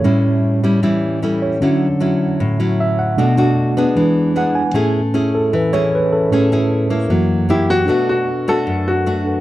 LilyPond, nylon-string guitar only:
\new Staff \with { instrumentName = "Nylon-string guitar" } { \time 4/4 \key a \major \tempo 4 = 153 << { <g cis' e'>4. <g cis' e'>8 <g cis' e'>4 <g cis' e'>4 | <fis cis' e'>8 r8 <fis cis' e'>4. <fis cis' e'>4. | <a d' fis'>8 <a d' fis'>4 <b d' gis'>4. <b d' gis'>8 r8 | <cis' e' gis'>8 r8 <cis' e' gis'>4 r8 <cis' e' gis'>4. |
<cis' e' gis'>8 <cis' e' gis'>4 <bes e'>4. <ais e' g'>4 | <a d' fis'>4 r8 <a d' fis'>4. <a d' fis'>4 | } \\ { a,2 e2 | d2 a,2 | b,2 e2 | a2 e2 |
a2 fis2 | b,2 fis,2 | } >> }